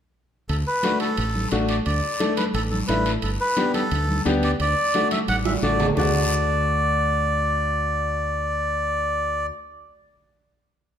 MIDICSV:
0, 0, Header, 1, 5, 480
1, 0, Start_track
1, 0, Key_signature, 2, "major"
1, 0, Tempo, 341880
1, 692, Time_signature, 4, 2, 24, 8
1, 15420, End_track
2, 0, Start_track
2, 0, Title_t, "Melodica"
2, 0, Program_c, 0, 22
2, 688, Note_on_c, 0, 69, 72
2, 797, Note_off_c, 0, 69, 0
2, 940, Note_on_c, 0, 71, 86
2, 1383, Note_off_c, 0, 71, 0
2, 1409, Note_on_c, 0, 69, 81
2, 2079, Note_off_c, 0, 69, 0
2, 2375, Note_on_c, 0, 74, 69
2, 2482, Note_off_c, 0, 74, 0
2, 2608, Note_on_c, 0, 74, 73
2, 3280, Note_off_c, 0, 74, 0
2, 3324, Note_on_c, 0, 71, 86
2, 3434, Note_off_c, 0, 71, 0
2, 3572, Note_on_c, 0, 69, 92
2, 3680, Note_off_c, 0, 69, 0
2, 3802, Note_on_c, 0, 69, 74
2, 3912, Note_off_c, 0, 69, 0
2, 4035, Note_on_c, 0, 71, 88
2, 4378, Note_off_c, 0, 71, 0
2, 4526, Note_on_c, 0, 69, 78
2, 4635, Note_off_c, 0, 69, 0
2, 4780, Note_on_c, 0, 71, 99
2, 5224, Note_off_c, 0, 71, 0
2, 5253, Note_on_c, 0, 69, 91
2, 5925, Note_off_c, 0, 69, 0
2, 6231, Note_on_c, 0, 74, 83
2, 6335, Note_off_c, 0, 74, 0
2, 6472, Note_on_c, 0, 74, 98
2, 7136, Note_off_c, 0, 74, 0
2, 7188, Note_on_c, 0, 76, 88
2, 7294, Note_off_c, 0, 76, 0
2, 7420, Note_on_c, 0, 78, 105
2, 7528, Note_off_c, 0, 78, 0
2, 7665, Note_on_c, 0, 76, 80
2, 7772, Note_off_c, 0, 76, 0
2, 7906, Note_on_c, 0, 74, 93
2, 8238, Note_off_c, 0, 74, 0
2, 8384, Note_on_c, 0, 74, 81
2, 13289, Note_off_c, 0, 74, 0
2, 15420, End_track
3, 0, Start_track
3, 0, Title_t, "Upright piano"
3, 0, Program_c, 1, 0
3, 1168, Note_on_c, 1, 57, 73
3, 1174, Note_on_c, 1, 62, 61
3, 1183, Note_on_c, 1, 66, 77
3, 1506, Note_off_c, 1, 57, 0
3, 1509, Note_off_c, 1, 62, 0
3, 1513, Note_off_c, 1, 66, 0
3, 2131, Note_on_c, 1, 57, 74
3, 2134, Note_on_c, 1, 62, 75
3, 2139, Note_on_c, 1, 66, 87
3, 2467, Note_off_c, 1, 57, 0
3, 2469, Note_off_c, 1, 62, 0
3, 2471, Note_off_c, 1, 66, 0
3, 3086, Note_on_c, 1, 57, 74
3, 3090, Note_on_c, 1, 62, 69
3, 3098, Note_on_c, 1, 69, 71
3, 3425, Note_off_c, 1, 57, 0
3, 3427, Note_off_c, 1, 62, 0
3, 3431, Note_off_c, 1, 69, 0
3, 4051, Note_on_c, 1, 57, 65
3, 4054, Note_on_c, 1, 62, 59
3, 4059, Note_on_c, 1, 64, 74
3, 4388, Note_off_c, 1, 57, 0
3, 4389, Note_off_c, 1, 62, 0
3, 4392, Note_off_c, 1, 64, 0
3, 5009, Note_on_c, 1, 59, 67
3, 5014, Note_on_c, 1, 62, 65
3, 5020, Note_on_c, 1, 67, 74
3, 5348, Note_off_c, 1, 59, 0
3, 5350, Note_off_c, 1, 62, 0
3, 5354, Note_off_c, 1, 67, 0
3, 5971, Note_on_c, 1, 59, 85
3, 5976, Note_on_c, 1, 62, 82
3, 5983, Note_on_c, 1, 67, 97
3, 6310, Note_off_c, 1, 59, 0
3, 6313, Note_off_c, 1, 62, 0
3, 6316, Note_off_c, 1, 67, 0
3, 6937, Note_on_c, 1, 57, 75
3, 6943, Note_on_c, 1, 62, 69
3, 6950, Note_on_c, 1, 66, 80
3, 7274, Note_off_c, 1, 57, 0
3, 7277, Note_off_c, 1, 62, 0
3, 7280, Note_off_c, 1, 66, 0
3, 7897, Note_on_c, 1, 57, 77
3, 7904, Note_on_c, 1, 62, 65
3, 7906, Note_on_c, 1, 66, 78
3, 8235, Note_off_c, 1, 57, 0
3, 8238, Note_off_c, 1, 62, 0
3, 8239, Note_off_c, 1, 66, 0
3, 8352, Note_on_c, 1, 57, 72
3, 8381, Note_on_c, 1, 62, 65
3, 8411, Note_on_c, 1, 66, 90
3, 13303, Note_off_c, 1, 57, 0
3, 13332, Note_off_c, 1, 62, 0
3, 13362, Note_off_c, 1, 66, 0
3, 15420, End_track
4, 0, Start_track
4, 0, Title_t, "Fingered electric bass"
4, 0, Program_c, 2, 33
4, 693, Note_on_c, 2, 38, 83
4, 885, Note_off_c, 2, 38, 0
4, 1658, Note_on_c, 2, 33, 80
4, 2039, Note_off_c, 2, 33, 0
4, 2135, Note_on_c, 2, 33, 78
4, 2518, Note_off_c, 2, 33, 0
4, 2618, Note_on_c, 2, 38, 94
4, 2807, Note_off_c, 2, 38, 0
4, 3571, Note_on_c, 2, 33, 90
4, 3955, Note_off_c, 2, 33, 0
4, 4055, Note_on_c, 2, 33, 83
4, 4439, Note_off_c, 2, 33, 0
4, 4529, Note_on_c, 2, 31, 78
4, 4723, Note_off_c, 2, 31, 0
4, 5499, Note_on_c, 2, 38, 91
4, 5882, Note_off_c, 2, 38, 0
4, 5979, Note_on_c, 2, 38, 88
4, 6362, Note_off_c, 2, 38, 0
4, 6456, Note_on_c, 2, 38, 90
4, 6649, Note_off_c, 2, 38, 0
4, 7417, Note_on_c, 2, 33, 90
4, 7802, Note_off_c, 2, 33, 0
4, 7897, Note_on_c, 2, 33, 80
4, 8282, Note_off_c, 2, 33, 0
4, 8382, Note_on_c, 2, 38, 84
4, 13334, Note_off_c, 2, 38, 0
4, 15420, End_track
5, 0, Start_track
5, 0, Title_t, "Drums"
5, 694, Note_on_c, 9, 63, 34
5, 694, Note_on_c, 9, 65, 60
5, 694, Note_on_c, 9, 74, 69
5, 834, Note_off_c, 9, 63, 0
5, 834, Note_off_c, 9, 74, 0
5, 835, Note_off_c, 9, 65, 0
5, 1166, Note_on_c, 9, 63, 86
5, 1172, Note_on_c, 9, 65, 69
5, 1175, Note_on_c, 9, 73, 72
5, 1307, Note_off_c, 9, 63, 0
5, 1313, Note_off_c, 9, 65, 0
5, 1315, Note_off_c, 9, 73, 0
5, 1404, Note_on_c, 9, 65, 67
5, 1416, Note_on_c, 9, 73, 62
5, 1544, Note_off_c, 9, 65, 0
5, 1557, Note_off_c, 9, 73, 0
5, 1649, Note_on_c, 9, 65, 68
5, 1651, Note_on_c, 9, 74, 61
5, 1656, Note_on_c, 9, 63, 34
5, 1789, Note_off_c, 9, 65, 0
5, 1791, Note_off_c, 9, 74, 0
5, 1797, Note_off_c, 9, 63, 0
5, 1902, Note_on_c, 9, 63, 65
5, 2042, Note_off_c, 9, 63, 0
5, 2127, Note_on_c, 9, 65, 63
5, 2132, Note_on_c, 9, 63, 74
5, 2138, Note_on_c, 9, 73, 68
5, 2267, Note_off_c, 9, 65, 0
5, 2272, Note_off_c, 9, 63, 0
5, 2278, Note_off_c, 9, 73, 0
5, 2367, Note_on_c, 9, 65, 62
5, 2372, Note_on_c, 9, 73, 65
5, 2508, Note_off_c, 9, 65, 0
5, 2512, Note_off_c, 9, 73, 0
5, 2610, Note_on_c, 9, 65, 61
5, 2612, Note_on_c, 9, 74, 73
5, 2613, Note_on_c, 9, 63, 34
5, 2750, Note_off_c, 9, 65, 0
5, 2752, Note_off_c, 9, 74, 0
5, 2753, Note_off_c, 9, 63, 0
5, 3087, Note_on_c, 9, 73, 69
5, 3094, Note_on_c, 9, 65, 70
5, 3095, Note_on_c, 9, 63, 78
5, 3227, Note_off_c, 9, 73, 0
5, 3235, Note_off_c, 9, 63, 0
5, 3235, Note_off_c, 9, 65, 0
5, 3329, Note_on_c, 9, 73, 68
5, 3333, Note_on_c, 9, 65, 72
5, 3340, Note_on_c, 9, 63, 61
5, 3469, Note_off_c, 9, 73, 0
5, 3473, Note_off_c, 9, 65, 0
5, 3480, Note_off_c, 9, 63, 0
5, 3570, Note_on_c, 9, 63, 31
5, 3574, Note_on_c, 9, 65, 68
5, 3576, Note_on_c, 9, 74, 67
5, 3711, Note_off_c, 9, 63, 0
5, 3715, Note_off_c, 9, 65, 0
5, 3716, Note_off_c, 9, 74, 0
5, 3810, Note_on_c, 9, 63, 71
5, 3951, Note_off_c, 9, 63, 0
5, 4051, Note_on_c, 9, 63, 73
5, 4051, Note_on_c, 9, 73, 64
5, 4052, Note_on_c, 9, 65, 68
5, 4191, Note_off_c, 9, 63, 0
5, 4191, Note_off_c, 9, 73, 0
5, 4193, Note_off_c, 9, 65, 0
5, 4294, Note_on_c, 9, 73, 68
5, 4295, Note_on_c, 9, 65, 65
5, 4435, Note_off_c, 9, 65, 0
5, 4435, Note_off_c, 9, 73, 0
5, 4525, Note_on_c, 9, 65, 66
5, 4534, Note_on_c, 9, 63, 36
5, 4537, Note_on_c, 9, 74, 73
5, 4666, Note_off_c, 9, 65, 0
5, 4675, Note_off_c, 9, 63, 0
5, 4677, Note_off_c, 9, 74, 0
5, 5008, Note_on_c, 9, 63, 76
5, 5008, Note_on_c, 9, 65, 70
5, 5014, Note_on_c, 9, 73, 59
5, 5148, Note_off_c, 9, 65, 0
5, 5149, Note_off_c, 9, 63, 0
5, 5154, Note_off_c, 9, 73, 0
5, 5251, Note_on_c, 9, 63, 68
5, 5251, Note_on_c, 9, 73, 69
5, 5256, Note_on_c, 9, 65, 65
5, 5392, Note_off_c, 9, 63, 0
5, 5392, Note_off_c, 9, 73, 0
5, 5397, Note_off_c, 9, 65, 0
5, 5493, Note_on_c, 9, 63, 34
5, 5496, Note_on_c, 9, 65, 65
5, 5498, Note_on_c, 9, 74, 65
5, 5634, Note_off_c, 9, 63, 0
5, 5637, Note_off_c, 9, 65, 0
5, 5638, Note_off_c, 9, 74, 0
5, 5736, Note_on_c, 9, 63, 74
5, 5876, Note_off_c, 9, 63, 0
5, 5969, Note_on_c, 9, 63, 73
5, 5981, Note_on_c, 9, 73, 61
5, 5983, Note_on_c, 9, 65, 62
5, 6109, Note_off_c, 9, 63, 0
5, 6121, Note_off_c, 9, 73, 0
5, 6124, Note_off_c, 9, 65, 0
5, 6220, Note_on_c, 9, 65, 62
5, 6220, Note_on_c, 9, 73, 74
5, 6360, Note_off_c, 9, 65, 0
5, 6360, Note_off_c, 9, 73, 0
5, 6455, Note_on_c, 9, 65, 65
5, 6456, Note_on_c, 9, 63, 36
5, 6460, Note_on_c, 9, 74, 73
5, 6596, Note_off_c, 9, 63, 0
5, 6596, Note_off_c, 9, 65, 0
5, 6601, Note_off_c, 9, 74, 0
5, 6936, Note_on_c, 9, 65, 66
5, 6939, Note_on_c, 9, 73, 61
5, 6945, Note_on_c, 9, 63, 80
5, 7076, Note_off_c, 9, 65, 0
5, 7080, Note_off_c, 9, 73, 0
5, 7086, Note_off_c, 9, 63, 0
5, 7175, Note_on_c, 9, 73, 65
5, 7178, Note_on_c, 9, 65, 72
5, 7186, Note_on_c, 9, 63, 67
5, 7316, Note_off_c, 9, 73, 0
5, 7318, Note_off_c, 9, 65, 0
5, 7326, Note_off_c, 9, 63, 0
5, 7418, Note_on_c, 9, 65, 71
5, 7420, Note_on_c, 9, 63, 86
5, 7420, Note_on_c, 9, 74, 59
5, 7559, Note_off_c, 9, 65, 0
5, 7560, Note_off_c, 9, 63, 0
5, 7560, Note_off_c, 9, 74, 0
5, 7658, Note_on_c, 9, 65, 89
5, 7662, Note_on_c, 9, 63, 103
5, 7798, Note_off_c, 9, 65, 0
5, 7802, Note_off_c, 9, 63, 0
5, 7902, Note_on_c, 9, 64, 70
5, 7905, Note_on_c, 9, 73, 67
5, 8042, Note_off_c, 9, 64, 0
5, 8045, Note_off_c, 9, 73, 0
5, 8139, Note_on_c, 9, 66, 89
5, 8140, Note_on_c, 9, 64, 89
5, 8142, Note_on_c, 9, 73, 64
5, 8280, Note_off_c, 9, 64, 0
5, 8280, Note_off_c, 9, 66, 0
5, 8282, Note_off_c, 9, 73, 0
5, 8379, Note_on_c, 9, 64, 104
5, 8379, Note_on_c, 9, 66, 80
5, 8382, Note_on_c, 9, 74, 108
5, 8519, Note_off_c, 9, 64, 0
5, 8520, Note_off_c, 9, 66, 0
5, 8522, Note_off_c, 9, 74, 0
5, 15420, End_track
0, 0, End_of_file